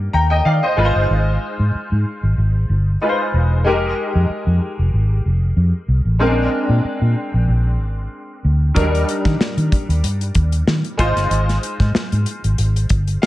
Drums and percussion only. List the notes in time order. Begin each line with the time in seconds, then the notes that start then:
8.76 kick, closed hi-hat
8.95 closed hi-hat
9.09 closed hi-hat
9.25 kick, snare, closed hi-hat
9.41 snare
9.58 closed hi-hat
9.72 kick, closed hi-hat
9.90 closed hi-hat
10.04 closed hi-hat
10.21 closed hi-hat
10.35 kick, closed hi-hat
10.52 closed hi-hat
10.67 snare
10.84 closed hi-hat
10.99 kick, closed hi-hat
11.17 snare, closed hi-hat
11.31 closed hi-hat
11.49 snare, closed hi-hat
11.63 closed hi-hat
11.80 kick, snare, closed hi-hat
11.95 snare
12.12 closed hi-hat
12.26 closed hi-hat
12.44 closed hi-hat
12.58 closed hi-hat
12.76 closed hi-hat
12.89 kick, closed hi-hat
13.07 closed hi-hat
13.23 snare